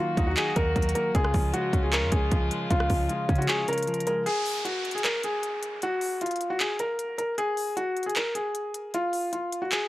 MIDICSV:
0, 0, Header, 1, 7, 480
1, 0, Start_track
1, 0, Tempo, 389610
1, 1413, Time_signature, 4, 2, 24, 8
1, 12172, End_track
2, 0, Start_track
2, 0, Title_t, "Felt piano"
2, 0, Program_c, 0, 0
2, 0, Note_on_c, 0, 65, 87
2, 313, Note_off_c, 0, 65, 0
2, 331, Note_on_c, 0, 66, 84
2, 430, Note_off_c, 0, 66, 0
2, 452, Note_on_c, 0, 68, 87
2, 648, Note_off_c, 0, 68, 0
2, 693, Note_on_c, 0, 70, 90
2, 1144, Note_off_c, 0, 70, 0
2, 1170, Note_on_c, 0, 70, 86
2, 1367, Note_off_c, 0, 70, 0
2, 1413, Note_on_c, 0, 68, 101
2, 1864, Note_off_c, 0, 68, 0
2, 1892, Note_on_c, 0, 66, 94
2, 2231, Note_off_c, 0, 66, 0
2, 2253, Note_on_c, 0, 68, 78
2, 2351, Note_off_c, 0, 68, 0
2, 2379, Note_on_c, 0, 70, 84
2, 2572, Note_off_c, 0, 70, 0
2, 2606, Note_on_c, 0, 68, 83
2, 3286, Note_off_c, 0, 68, 0
2, 3334, Note_on_c, 0, 65, 107
2, 3785, Note_off_c, 0, 65, 0
2, 3808, Note_on_c, 0, 65, 78
2, 4149, Note_off_c, 0, 65, 0
2, 4168, Note_on_c, 0, 66, 84
2, 4268, Note_off_c, 0, 66, 0
2, 4290, Note_on_c, 0, 68, 93
2, 4487, Note_off_c, 0, 68, 0
2, 4540, Note_on_c, 0, 70, 96
2, 4988, Note_off_c, 0, 70, 0
2, 5012, Note_on_c, 0, 70, 84
2, 5208, Note_off_c, 0, 70, 0
2, 5249, Note_on_c, 0, 68, 107
2, 5702, Note_off_c, 0, 68, 0
2, 5727, Note_on_c, 0, 66, 83
2, 6068, Note_off_c, 0, 66, 0
2, 6097, Note_on_c, 0, 68, 75
2, 6193, Note_off_c, 0, 68, 0
2, 6212, Note_on_c, 0, 70, 79
2, 6408, Note_off_c, 0, 70, 0
2, 6457, Note_on_c, 0, 68, 86
2, 7132, Note_off_c, 0, 68, 0
2, 7184, Note_on_c, 0, 66, 98
2, 7630, Note_off_c, 0, 66, 0
2, 7657, Note_on_c, 0, 65, 83
2, 7993, Note_off_c, 0, 65, 0
2, 8009, Note_on_c, 0, 66, 84
2, 8109, Note_off_c, 0, 66, 0
2, 8133, Note_on_c, 0, 68, 81
2, 8328, Note_off_c, 0, 68, 0
2, 8374, Note_on_c, 0, 70, 92
2, 8825, Note_off_c, 0, 70, 0
2, 8847, Note_on_c, 0, 70, 83
2, 9045, Note_off_c, 0, 70, 0
2, 9091, Note_on_c, 0, 68, 100
2, 9543, Note_off_c, 0, 68, 0
2, 9569, Note_on_c, 0, 66, 92
2, 9909, Note_off_c, 0, 66, 0
2, 9934, Note_on_c, 0, 68, 80
2, 10031, Note_off_c, 0, 68, 0
2, 10057, Note_on_c, 0, 70, 83
2, 10251, Note_off_c, 0, 70, 0
2, 10287, Note_on_c, 0, 68, 83
2, 10967, Note_off_c, 0, 68, 0
2, 11019, Note_on_c, 0, 65, 102
2, 11468, Note_off_c, 0, 65, 0
2, 11491, Note_on_c, 0, 65, 76
2, 11830, Note_off_c, 0, 65, 0
2, 11849, Note_on_c, 0, 66, 84
2, 11948, Note_off_c, 0, 66, 0
2, 11970, Note_on_c, 0, 68, 87
2, 12167, Note_off_c, 0, 68, 0
2, 12172, End_track
3, 0, Start_track
3, 0, Title_t, "French horn section"
3, 0, Program_c, 1, 60
3, 0, Note_on_c, 1, 51, 85
3, 0, Note_on_c, 1, 58, 77
3, 0, Note_on_c, 1, 66, 93
3, 1393, Note_off_c, 1, 66, 0
3, 1394, Note_off_c, 1, 51, 0
3, 1394, Note_off_c, 1, 58, 0
3, 1414, Note_on_c, 1, 49, 86
3, 1415, Note_on_c, 1, 56, 78
3, 1415, Note_on_c, 1, 65, 95
3, 5215, Note_off_c, 1, 49, 0
3, 5215, Note_off_c, 1, 56, 0
3, 5216, Note_off_c, 1, 65, 0
3, 12172, End_track
4, 0, Start_track
4, 0, Title_t, "Clean electric guitar"
4, 0, Program_c, 2, 27
4, 0, Note_on_c, 2, 51, 92
4, 0, Note_on_c, 2, 54, 80
4, 0, Note_on_c, 2, 58, 92
4, 212, Note_on_c, 2, 63, 99
4, 453, Note_on_c, 2, 75, 98
4, 677, Note_off_c, 2, 51, 0
4, 692, Note_on_c, 2, 51, 79
4, 917, Note_off_c, 2, 54, 0
4, 932, Note_on_c, 2, 54, 89
4, 1162, Note_off_c, 2, 58, 0
4, 1177, Note_on_c, 2, 58, 91
4, 1408, Note_off_c, 2, 51, 0
4, 1413, Note_off_c, 2, 54, 0
4, 1413, Note_off_c, 2, 63, 0
4, 1413, Note_off_c, 2, 75, 0
4, 1413, Note_on_c, 2, 49, 94
4, 1415, Note_off_c, 2, 58, 0
4, 1654, Note_on_c, 2, 53, 84
4, 1892, Note_on_c, 2, 56, 96
4, 2135, Note_on_c, 2, 61, 93
4, 2372, Note_on_c, 2, 73, 104
4, 2597, Note_off_c, 2, 49, 0
4, 2612, Note_on_c, 2, 49, 84
4, 2839, Note_off_c, 2, 53, 0
4, 2854, Note_on_c, 2, 53, 93
4, 3076, Note_off_c, 2, 56, 0
4, 3090, Note_on_c, 2, 56, 87
4, 3321, Note_off_c, 2, 49, 0
4, 3334, Note_off_c, 2, 61, 0
4, 3336, Note_on_c, 2, 49, 97
4, 3556, Note_off_c, 2, 53, 0
4, 3571, Note_on_c, 2, 53, 82
4, 3572, Note_off_c, 2, 73, 0
4, 3799, Note_off_c, 2, 56, 0
4, 3814, Note_on_c, 2, 56, 94
4, 4054, Note_on_c, 2, 61, 90
4, 4292, Note_on_c, 2, 73, 98
4, 4519, Note_off_c, 2, 49, 0
4, 4534, Note_on_c, 2, 49, 79
4, 4759, Note_off_c, 2, 53, 0
4, 4774, Note_on_c, 2, 53, 94
4, 4998, Note_off_c, 2, 56, 0
4, 5013, Note_on_c, 2, 56, 89
4, 5253, Note_off_c, 2, 56, 0
4, 5253, Note_off_c, 2, 73, 0
4, 5254, Note_off_c, 2, 49, 0
4, 5254, Note_off_c, 2, 53, 0
4, 5254, Note_off_c, 2, 61, 0
4, 12172, End_track
5, 0, Start_track
5, 0, Title_t, "808-style bass"
5, 0, Program_c, 3, 38
5, 213, Note_on_c, 3, 39, 100
5, 443, Note_off_c, 3, 39, 0
5, 694, Note_on_c, 3, 39, 110
5, 924, Note_off_c, 3, 39, 0
5, 934, Note_on_c, 3, 39, 103
5, 1164, Note_off_c, 3, 39, 0
5, 1414, Note_on_c, 3, 37, 117
5, 1644, Note_off_c, 3, 37, 0
5, 1654, Note_on_c, 3, 37, 106
5, 1884, Note_off_c, 3, 37, 0
5, 2133, Note_on_c, 3, 37, 100
5, 2495, Note_on_c, 3, 41, 103
5, 2513, Note_off_c, 3, 37, 0
5, 2608, Note_off_c, 3, 41, 0
5, 2614, Note_on_c, 3, 37, 110
5, 2844, Note_off_c, 3, 37, 0
5, 2854, Note_on_c, 3, 37, 107
5, 3084, Note_off_c, 3, 37, 0
5, 3334, Note_on_c, 3, 37, 114
5, 3564, Note_off_c, 3, 37, 0
5, 3574, Note_on_c, 3, 37, 107
5, 3804, Note_off_c, 3, 37, 0
5, 4052, Note_on_c, 3, 49, 99
5, 4283, Note_off_c, 3, 49, 0
5, 12172, End_track
6, 0, Start_track
6, 0, Title_t, "Downlifter"
6, 0, Program_c, 4, 103
6, 5253, Note_on_c, 4, 60, 85
6, 9093, Note_off_c, 4, 60, 0
6, 12172, End_track
7, 0, Start_track
7, 0, Title_t, "Drums"
7, 213, Note_on_c, 9, 36, 110
7, 216, Note_on_c, 9, 42, 66
7, 336, Note_off_c, 9, 36, 0
7, 339, Note_off_c, 9, 42, 0
7, 453, Note_on_c, 9, 39, 125
7, 457, Note_on_c, 9, 42, 75
7, 577, Note_off_c, 9, 39, 0
7, 580, Note_off_c, 9, 42, 0
7, 690, Note_on_c, 9, 42, 75
7, 694, Note_on_c, 9, 36, 99
7, 813, Note_off_c, 9, 42, 0
7, 817, Note_off_c, 9, 36, 0
7, 934, Note_on_c, 9, 36, 103
7, 934, Note_on_c, 9, 42, 46
7, 1015, Note_off_c, 9, 42, 0
7, 1015, Note_on_c, 9, 42, 63
7, 1057, Note_off_c, 9, 36, 0
7, 1094, Note_off_c, 9, 42, 0
7, 1094, Note_on_c, 9, 42, 79
7, 1173, Note_off_c, 9, 42, 0
7, 1173, Note_on_c, 9, 42, 86
7, 1297, Note_off_c, 9, 42, 0
7, 1414, Note_on_c, 9, 36, 125
7, 1414, Note_on_c, 9, 42, 80
7, 1534, Note_on_c, 9, 37, 109
7, 1537, Note_off_c, 9, 42, 0
7, 1538, Note_off_c, 9, 36, 0
7, 1649, Note_on_c, 9, 46, 76
7, 1654, Note_on_c, 9, 36, 95
7, 1657, Note_off_c, 9, 37, 0
7, 1772, Note_off_c, 9, 46, 0
7, 1777, Note_off_c, 9, 36, 0
7, 1893, Note_on_c, 9, 42, 78
7, 2016, Note_off_c, 9, 42, 0
7, 2133, Note_on_c, 9, 36, 109
7, 2136, Note_on_c, 9, 42, 73
7, 2257, Note_off_c, 9, 36, 0
7, 2259, Note_off_c, 9, 42, 0
7, 2374, Note_on_c, 9, 39, 123
7, 2377, Note_on_c, 9, 42, 72
7, 2497, Note_off_c, 9, 39, 0
7, 2500, Note_off_c, 9, 42, 0
7, 2610, Note_on_c, 9, 42, 79
7, 2614, Note_on_c, 9, 36, 99
7, 2733, Note_off_c, 9, 42, 0
7, 2737, Note_off_c, 9, 36, 0
7, 2852, Note_on_c, 9, 42, 74
7, 2853, Note_on_c, 9, 36, 104
7, 2975, Note_off_c, 9, 42, 0
7, 2977, Note_off_c, 9, 36, 0
7, 3093, Note_on_c, 9, 42, 77
7, 3217, Note_off_c, 9, 42, 0
7, 3333, Note_on_c, 9, 42, 79
7, 3334, Note_on_c, 9, 36, 119
7, 3452, Note_on_c, 9, 37, 109
7, 3456, Note_off_c, 9, 42, 0
7, 3457, Note_off_c, 9, 36, 0
7, 3569, Note_on_c, 9, 46, 74
7, 3573, Note_on_c, 9, 36, 95
7, 3575, Note_off_c, 9, 37, 0
7, 3692, Note_off_c, 9, 46, 0
7, 3696, Note_off_c, 9, 36, 0
7, 3812, Note_on_c, 9, 42, 77
7, 3935, Note_off_c, 9, 42, 0
7, 4052, Note_on_c, 9, 36, 104
7, 4052, Note_on_c, 9, 42, 40
7, 4133, Note_off_c, 9, 42, 0
7, 4133, Note_on_c, 9, 42, 55
7, 4176, Note_off_c, 9, 36, 0
7, 4213, Note_off_c, 9, 42, 0
7, 4213, Note_on_c, 9, 42, 66
7, 4293, Note_on_c, 9, 39, 123
7, 4296, Note_off_c, 9, 42, 0
7, 4296, Note_on_c, 9, 42, 70
7, 4416, Note_off_c, 9, 39, 0
7, 4420, Note_off_c, 9, 42, 0
7, 4533, Note_on_c, 9, 42, 65
7, 4592, Note_off_c, 9, 42, 0
7, 4592, Note_on_c, 9, 42, 66
7, 4653, Note_off_c, 9, 42, 0
7, 4653, Note_on_c, 9, 42, 68
7, 4713, Note_off_c, 9, 42, 0
7, 4713, Note_on_c, 9, 42, 64
7, 4773, Note_off_c, 9, 42, 0
7, 4773, Note_on_c, 9, 42, 49
7, 4853, Note_off_c, 9, 42, 0
7, 4853, Note_on_c, 9, 42, 64
7, 4933, Note_off_c, 9, 42, 0
7, 4933, Note_on_c, 9, 42, 81
7, 5012, Note_off_c, 9, 42, 0
7, 5012, Note_on_c, 9, 42, 85
7, 5135, Note_off_c, 9, 42, 0
7, 5253, Note_on_c, 9, 42, 76
7, 5376, Note_off_c, 9, 42, 0
7, 5490, Note_on_c, 9, 46, 74
7, 5613, Note_off_c, 9, 46, 0
7, 5733, Note_on_c, 9, 42, 69
7, 5856, Note_off_c, 9, 42, 0
7, 5973, Note_on_c, 9, 42, 38
7, 6053, Note_off_c, 9, 42, 0
7, 6053, Note_on_c, 9, 42, 52
7, 6133, Note_off_c, 9, 42, 0
7, 6133, Note_on_c, 9, 42, 63
7, 6213, Note_on_c, 9, 39, 121
7, 6216, Note_off_c, 9, 42, 0
7, 6216, Note_on_c, 9, 42, 76
7, 6336, Note_off_c, 9, 39, 0
7, 6340, Note_off_c, 9, 42, 0
7, 6449, Note_on_c, 9, 42, 76
7, 6572, Note_off_c, 9, 42, 0
7, 6691, Note_on_c, 9, 42, 80
7, 6814, Note_off_c, 9, 42, 0
7, 6931, Note_on_c, 9, 42, 83
7, 7054, Note_off_c, 9, 42, 0
7, 7171, Note_on_c, 9, 42, 77
7, 7294, Note_off_c, 9, 42, 0
7, 7408, Note_on_c, 9, 46, 72
7, 7531, Note_off_c, 9, 46, 0
7, 7652, Note_on_c, 9, 42, 68
7, 7713, Note_off_c, 9, 42, 0
7, 7713, Note_on_c, 9, 42, 60
7, 7773, Note_off_c, 9, 42, 0
7, 7773, Note_on_c, 9, 42, 49
7, 7832, Note_off_c, 9, 42, 0
7, 7832, Note_on_c, 9, 42, 41
7, 7894, Note_off_c, 9, 42, 0
7, 7894, Note_on_c, 9, 42, 68
7, 8017, Note_off_c, 9, 42, 0
7, 8132, Note_on_c, 9, 39, 122
7, 8136, Note_on_c, 9, 42, 75
7, 8255, Note_off_c, 9, 39, 0
7, 8259, Note_off_c, 9, 42, 0
7, 8368, Note_on_c, 9, 42, 77
7, 8492, Note_off_c, 9, 42, 0
7, 8611, Note_on_c, 9, 42, 73
7, 8734, Note_off_c, 9, 42, 0
7, 8852, Note_on_c, 9, 42, 80
7, 8975, Note_off_c, 9, 42, 0
7, 9093, Note_on_c, 9, 42, 76
7, 9216, Note_off_c, 9, 42, 0
7, 9329, Note_on_c, 9, 46, 73
7, 9452, Note_off_c, 9, 46, 0
7, 9572, Note_on_c, 9, 42, 70
7, 9695, Note_off_c, 9, 42, 0
7, 9814, Note_on_c, 9, 42, 40
7, 9892, Note_off_c, 9, 42, 0
7, 9892, Note_on_c, 9, 42, 52
7, 9973, Note_off_c, 9, 42, 0
7, 9973, Note_on_c, 9, 42, 64
7, 10052, Note_on_c, 9, 39, 118
7, 10055, Note_off_c, 9, 42, 0
7, 10055, Note_on_c, 9, 42, 75
7, 10175, Note_off_c, 9, 39, 0
7, 10178, Note_off_c, 9, 42, 0
7, 10289, Note_on_c, 9, 42, 72
7, 10412, Note_off_c, 9, 42, 0
7, 10530, Note_on_c, 9, 42, 79
7, 10654, Note_off_c, 9, 42, 0
7, 10772, Note_on_c, 9, 42, 83
7, 10895, Note_off_c, 9, 42, 0
7, 11012, Note_on_c, 9, 42, 76
7, 11136, Note_off_c, 9, 42, 0
7, 11249, Note_on_c, 9, 46, 70
7, 11372, Note_off_c, 9, 46, 0
7, 11492, Note_on_c, 9, 42, 70
7, 11615, Note_off_c, 9, 42, 0
7, 11734, Note_on_c, 9, 42, 70
7, 11858, Note_off_c, 9, 42, 0
7, 11972, Note_on_c, 9, 39, 118
7, 11975, Note_on_c, 9, 42, 76
7, 12095, Note_off_c, 9, 39, 0
7, 12098, Note_off_c, 9, 42, 0
7, 12172, End_track
0, 0, End_of_file